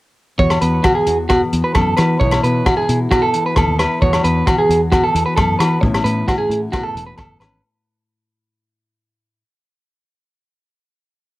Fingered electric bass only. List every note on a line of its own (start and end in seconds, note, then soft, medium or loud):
0.39 0.57 E2 loud
0.62 0.79 E2 medium
1.07 1.42 E2 medium
1.53 1.62 E2 medium
1.75 1.93 F#2 medium
1.99 2.16 E3 loud
2.21 2.38 B1 loud
2.43 2.61 B2 medium
2.89 3.06 B2 medium
3.57 3.65 D#2 medium
3.67 3.85 D#2 medium
4.02 4.19 E2 loud
4.24 4.42 E2 medium
4.69 5.04 E2 medium
5.15 5.23 E2 medium
5.38 5.55 F#2 medium
5.60 5.77 E3 medium
5.83 6.00 A1 loud
6.05 6.22 A2 medium
6.49 6.67 A2 medium
6.95 7.15 E1 medium
7.19 7.38 F#1 medium
7.40 7.60 G#1 medium